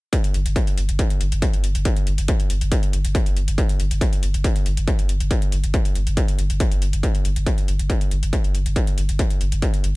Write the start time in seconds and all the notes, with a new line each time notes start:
0.13 kick, closed hi-hat
0.24 closed hi-hat
0.34 G1, closed hi-hat
0.46 G1, closed hi-hat
0.56 kick, closed hi-hat
0.67 closed hi-hat
0.77 G1, closed hi-hat
0.89 G1, closed hi-hat
0.99 kick, closed hi-hat
1.10 closed hi-hat
1.21 G1, closed hi-hat
1.32 G1, closed hi-hat
1.42 kick, closed hi-hat
1.53 G1, closed hi-hat
1.64 G1, closed hi-hat
1.75 G1, closed hi-hat
1.85 kick, closed hi-hat
1.97 closed hi-hat
2.07 G1, closed hi-hat
2.18 G1, closed hi-hat
2.28 kick, closed hi-hat
2.40 closed hi-hat
2.50 G1, closed hi-hat
2.61 G1, closed hi-hat
2.72 kick, closed hi-hat
2.83 closed hi-hat
2.93 G1, closed hi-hat
3.05 G1, closed hi-hat
3.15 kick, closed hi-hat
3.26 G1, closed hi-hat
3.36 G1, closed hi-hat
3.48 G1, closed hi-hat
3.58 kick, closed hi-hat
3.69 closed hi-hat
3.80 G1, closed hi-hat
3.91 G1, closed hi-hat
4.01 kick, closed hi-hat
4.13 closed hi-hat
4.23 G1, closed hi-hat
4.34 G1, closed hi-hat
4.44 kick, closed hi-hat
4.56 closed hi-hat
4.66 G1, closed hi-hat
4.77 G1, closed hi-hat
4.88 kick, closed hi-hat
4.99 G1, closed hi-hat
5.09 G1, closed hi-hat
5.20 G1, closed hi-hat
5.31 kick, closed hi-hat
5.42 closed hi-hat
5.52 G1, closed hi-hat
5.64 G1, closed hi-hat
5.74 kick, closed hi-hat
5.85 closed hi-hat
5.95 G1, closed hi-hat
6.07 G1, closed hi-hat
6.17 kick, closed hi-hat
6.28 closed hi-hat
6.39 G1, closed hi-hat
6.50 G1, closed hi-hat
6.60 kick, closed hi-hat
6.71 G1, closed hi-hat
6.82 G1, closed hi-hat
6.93 G1, closed hi-hat
7.03 kick, closed hi-hat
7.15 closed hi-hat
7.25 G1, closed hi-hat
7.36 G1, closed hi-hat
7.46 kick, closed hi-hat
7.58 closed hi-hat
7.68 G1, closed hi-hat
7.79 G1, closed hi-hat
7.90 kick, closed hi-hat
8.01 closed hi-hat
8.11 G1, closed hi-hat
8.22 G1, closed hi-hat
8.33 kick, closed hi-hat
8.44 G1, closed hi-hat
8.54 G1, closed hi-hat
8.66 G1, closed hi-hat
8.76 kick, closed hi-hat
8.87 closed hi-hat
8.98 G1, closed hi-hat
9.09 G1, closed hi-hat
9.19 kick, closed hi-hat
9.30 closed hi-hat
9.41 G1, closed hi-hat
9.52 G1, closed hi-hat
9.62 kick, closed hi-hat
9.74 closed hi-hat
9.84 G1, closed hi-hat